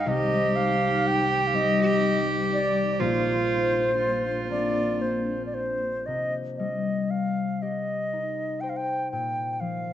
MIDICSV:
0, 0, Header, 1, 5, 480
1, 0, Start_track
1, 0, Key_signature, -3, "minor"
1, 0, Tempo, 978793
1, 33, Time_signature, 6, 3, 24, 8
1, 1954, Tempo, 1039861
1, 3394, Tempo, 995025
1, 4757, End_track
2, 0, Start_track
2, 0, Title_t, "Flute"
2, 0, Program_c, 0, 73
2, 2, Note_on_c, 0, 77, 80
2, 40, Note_on_c, 0, 75, 97
2, 48, Note_off_c, 0, 77, 0
2, 273, Note_on_c, 0, 77, 97
2, 280, Note_off_c, 0, 75, 0
2, 525, Note_on_c, 0, 79, 96
2, 532, Note_off_c, 0, 77, 0
2, 721, Note_on_c, 0, 77, 71
2, 728, Note_off_c, 0, 79, 0
2, 761, Note_on_c, 0, 75, 103
2, 768, Note_off_c, 0, 77, 0
2, 1114, Note_off_c, 0, 75, 0
2, 1240, Note_on_c, 0, 74, 92
2, 1436, Note_off_c, 0, 74, 0
2, 1436, Note_on_c, 0, 74, 60
2, 1469, Note_on_c, 0, 72, 89
2, 1477, Note_off_c, 0, 74, 0
2, 2191, Note_off_c, 0, 72, 0
2, 2196, Note_on_c, 0, 74, 86
2, 2429, Note_on_c, 0, 72, 66
2, 2436, Note_off_c, 0, 74, 0
2, 2631, Note_off_c, 0, 72, 0
2, 2634, Note_on_c, 0, 74, 47
2, 2673, Note_on_c, 0, 72, 78
2, 2679, Note_off_c, 0, 74, 0
2, 2912, Note_on_c, 0, 75, 74
2, 2919, Note_off_c, 0, 72, 0
2, 3040, Note_off_c, 0, 75, 0
2, 3146, Note_on_c, 0, 75, 70
2, 3394, Note_on_c, 0, 77, 71
2, 3401, Note_off_c, 0, 75, 0
2, 3643, Note_on_c, 0, 75, 73
2, 3650, Note_off_c, 0, 77, 0
2, 4118, Note_on_c, 0, 79, 76
2, 4125, Note_off_c, 0, 75, 0
2, 4160, Note_on_c, 0, 77, 63
2, 4168, Note_off_c, 0, 79, 0
2, 4195, Note_on_c, 0, 79, 83
2, 4203, Note_off_c, 0, 77, 0
2, 4361, Note_off_c, 0, 79, 0
2, 4364, Note_on_c, 0, 79, 78
2, 4564, Note_off_c, 0, 79, 0
2, 4564, Note_on_c, 0, 79, 53
2, 4599, Note_on_c, 0, 77, 76
2, 4606, Note_off_c, 0, 79, 0
2, 4757, Note_off_c, 0, 77, 0
2, 4757, End_track
3, 0, Start_track
3, 0, Title_t, "Cello"
3, 0, Program_c, 1, 42
3, 31, Note_on_c, 1, 67, 126
3, 1468, Note_on_c, 1, 65, 102
3, 1475, Note_off_c, 1, 67, 0
3, 1950, Note_off_c, 1, 65, 0
3, 1953, Note_on_c, 1, 65, 79
3, 2657, Note_off_c, 1, 65, 0
3, 4757, End_track
4, 0, Start_track
4, 0, Title_t, "Ambient pad"
4, 0, Program_c, 2, 92
4, 0, Note_on_c, 2, 63, 69
4, 0, Note_on_c, 2, 72, 86
4, 29, Note_on_c, 2, 55, 73
4, 1454, Note_off_c, 2, 63, 0
4, 1456, Note_off_c, 2, 55, 0
4, 1470, Note_on_c, 2, 58, 73
4, 1473, Note_on_c, 2, 62, 76
4, 2899, Note_off_c, 2, 72, 0
4, 2902, Note_off_c, 2, 58, 0
4, 2904, Note_off_c, 2, 62, 0
4, 4757, End_track
5, 0, Start_track
5, 0, Title_t, "Harp"
5, 0, Program_c, 3, 46
5, 0, Note_on_c, 3, 32, 52
5, 0, Note_on_c, 3, 44, 66
5, 0, Note_on_c, 3, 56, 50
5, 0, Note_on_c, 3, 60, 39
5, 0, Note_on_c, 3, 63, 54
5, 29, Note_on_c, 3, 36, 64
5, 34, Note_on_c, 3, 48, 69
5, 58, Note_off_c, 3, 32, 0
5, 58, Note_off_c, 3, 44, 0
5, 58, Note_off_c, 3, 56, 0
5, 655, Note_off_c, 3, 63, 0
5, 750, Note_off_c, 3, 60, 0
5, 751, Note_on_c, 3, 55, 47
5, 752, Note_on_c, 3, 60, 42
5, 756, Note_on_c, 3, 63, 55
5, 1469, Note_on_c, 3, 34, 64
5, 1472, Note_on_c, 3, 46, 65
5, 1497, Note_off_c, 3, 36, 0
5, 1497, Note_off_c, 3, 48, 0
5, 1497, Note_off_c, 3, 55, 0
5, 2074, Note_off_c, 3, 63, 0
5, 2190, Note_on_c, 3, 58, 39
5, 2192, Note_off_c, 3, 60, 0
5, 2194, Note_on_c, 3, 60, 35
5, 2196, Note_on_c, 3, 62, 44
5, 2919, Note_on_c, 3, 48, 44
5, 2941, Note_off_c, 3, 34, 0
5, 2941, Note_off_c, 3, 46, 0
5, 3159, Note_on_c, 3, 55, 42
5, 3492, Note_off_c, 3, 62, 0
5, 3587, Note_off_c, 3, 60, 0
5, 3645, Note_on_c, 3, 67, 36
5, 3687, Note_off_c, 3, 58, 0
5, 3889, Note_on_c, 3, 63, 39
5, 4130, Note_on_c, 3, 72, 47
5, 4370, Note_on_c, 3, 46, 46
5, 4388, Note_off_c, 3, 48, 0
5, 4388, Note_off_c, 3, 55, 0
5, 4602, Note_on_c, 3, 53, 40
5, 4757, Note_off_c, 3, 46, 0
5, 4757, Note_off_c, 3, 53, 0
5, 4757, Note_off_c, 3, 63, 0
5, 4757, Note_off_c, 3, 67, 0
5, 4757, Note_off_c, 3, 72, 0
5, 4757, End_track
0, 0, End_of_file